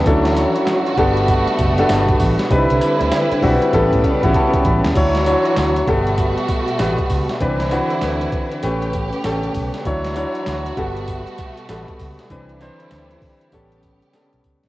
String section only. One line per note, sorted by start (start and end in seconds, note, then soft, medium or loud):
0.06 0.97 E3 medium
0.06 2.48 F#4 medium
0.06 0.97 C#5 medium
0.98 2.49 B2 medium
0.98 2.49 A3 medium
2.51 3.72 D3 medium
2.51 3.72 E4 medium
2.51 4.93 B4 medium
3.73 4.94 C#3 medium
3.73 4.94 G3 medium
4.95 5.86 E3 medium
4.95 5.86 F#4 medium
4.95 5.86 C#5 medium
5.87 7.39 B2 medium
5.87 7.39 A3 medium
5.87 7.39 F#4 loud
7.40 8.62 D3 medium
7.40 8.62 E4 medium
7.40 8.62 B4 medium
8.63 9.84 C#3 medium
8.63 9.84 B3 medium
8.63 9.84 G4 loud
9.85 10.76 E3 medium
9.85 12.28 F#4 medium
9.85 10.76 C#5 medium
10.77 12.29 B2 medium
10.77 12.29 A3 medium
12.30 13.51 D3 medium
12.30 14.69 G3 medium
12.30 13.52 E4 medium
13.53 14.69 C#3 medium
13.53 14.69 G4 medium